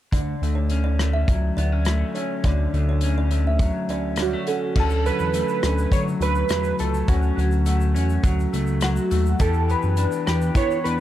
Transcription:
0.12 analog synth bass D2, clean electric guitar D3, kalimba D5, kick, closed hi-hat
0.42 analog synth bass D2, clean electric guitar A3, closed hi-hat
0.55 kalimba C#5
0.70 clean electric guitar C#4, closed hi-hat
0.84 kalimba D5
0.99 clean electric guitar A3, cross-stick, closed hi-hat
1.13 kalimba E5
1.28 analog synth bass C#2, clean electric guitar F#3, kick, closed hi-hat
1.57 analog synth bass D2, clean electric guitar B3, kalimba D5, closed hi-hat
1.72 clean electric guitar C#4
1.85 clean electric guitar A3, cross-stick, closed hi-hat
2.15 clean electric guitar C#4, kalimba C#5, closed hi-hat
2.44 analog synth bass D2, clean electric guitar D3, kalimba D5, kick, closed hi-hat
2.73 analog synth bass D2, clean electric guitar A3, closed hi-hat
2.89 kalimba C#5
3.01 clean electric guitar C#4, closed hi-hat
3.18 kalimba D5
3.31 clean electric guitar A3, closed hi-hat
3.47 kalimba E5
3.59 clean electric guitar F#3, kick, closed hi-hat
3.89 analog synth bass D2, clean electric guitar C#4, kalimba D5, closed hi-hat
4.16 clean electric guitar G3, kalimba C#5, cross-stick, closed hi-hat
4.22 synth keys F#4
4.33 clean electric guitar A3
4.47 clean electric guitar C#4, kalimba A4, closed hi-hat
4.76 analog synth bass D2, clean electric guitar D3 C#4, synth keys A4, kick, crash
4.90 shaker
5.06 clean electric guitar F#3, synth keys B4, closed hi-hat, shaker
5.19 analog synth bass E2, shaker
5.34 clean electric guitar A3, closed hi-hat, shaker
5.49 shaker
5.63 analog synth bass D2, clean electric guitar C#4, cross-stick, closed hi-hat, shaker
5.78 shaker
5.92 analog synth bass D3, clean electric guitar F#3, synth keys C#5, kick, closed hi-hat, shaker
6.08 shaker
6.20 analog synth bass D2, clean electric guitar A3, synth keys B4, closed hi-hat, shaker
6.35 shaker
6.49 analog synth bass E2, clean electric guitar F#3, cross-stick, closed hi-hat, shaker
6.64 shaker
6.79 analog synth bass C#2, clean electric guitar A3, synth keys A4, closed hi-hat, shaker
6.94 shaker
7.08 analog synth bass D2, clean electric guitar C#4, synth keys F#4, kick, closed hi-hat, shaker
7.22 shaker
7.36 analog synth bass D2, clean electric guitar F#3, closed hi-hat, shaker
7.52 shaker
7.66 clean electric guitar A3, closed hi-hat, shaker
7.81 shaker
7.95 analog synth bass E2, clean electric guitar C#4, closed hi-hat, shaker
8.10 shaker
8.23 analog synth bass D2, clean electric guitar F#3, kick, closed hi-hat, shaker
8.40 shaker
8.53 analog synth bass C#2, clean electric guitar A3, closed hi-hat, shaker
8.67 shaker
8.81 clean electric guitar F#3, synth keys F#4, cross-stick, closed hi-hat, shaker
8.96 shaker
9.11 analog synth bass D#2, clean electric guitar A3, closed hi-hat, shaker
9.26 shaker
9.40 analog synth bass E2, clean electric guitar E3 G4, synth keys A4, kick, closed hi-hat, shaker
9.54 shaker
9.68 clean electric guitar B3, synth keys B4, closed hi-hat, shaker
9.82 analog synth bass F#2, shaker
9.97 clean electric guitar D4, closed hi-hat, shaker
10.12 shaker
10.27 analog synth bass E2, clean electric guitar G4, cross-stick, closed hi-hat, shaker
10.42 shaker
10.55 analog synth bass E3, clean electric guitar B3, synth keys C#5, kick, closed hi-hat, shaker
10.71 shaker
10.84 analog synth bass E2, clean electric guitar D4, synth keys B4, closed hi-hat, shaker

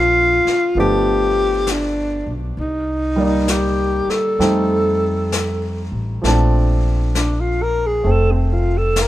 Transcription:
Already playing: upright bass A#1, grand piano F3 A3 C4 D4, alto saxophone F4
0.45 muted upright bass stroke, snare
0.75 upright bass G1, grand piano F3 A3 B3 D4, brush sweep
0.80 alto saxophone G4
1.67 snare, hi-hat pedal
1.72 alto saxophone D4
2.26 upright bass B1
2.57 upright bass C2, alto saxophone D#4, brush sweep
3.16 grand piano G3 A#3 D5
3.21 grand piano D#4
3.48 alto saxophone G4, snare, hi-hat pedal
4.07 alto saxophone A4, muted upright bass stroke, snare
4.39 upright bass F2, grand piano G3 A3 C4 D#4, brush sweep, snare
5.32 snare, hi-hat pedal
5.92 upright bass A1
6.22 upright bass A#1, grand piano F3 A3 C4, brush sweep, snare
6.27 grand piano D4
7.15 alto saxophone D4, snare, hi-hat pedal
7.40 alto saxophone F4
7.63 alto saxophone A#4
7.86 alto saxophone G#4
8.04 upright bass F1, grand piano A3 C4, brush sweep
8.11 alto saxophone A4
8.32 alto saxophone C4
8.53 alto saxophone F4
8.78 alto saxophone A4
8.96 snare, hi-hat pedal
9.01 alto saxophone A#4

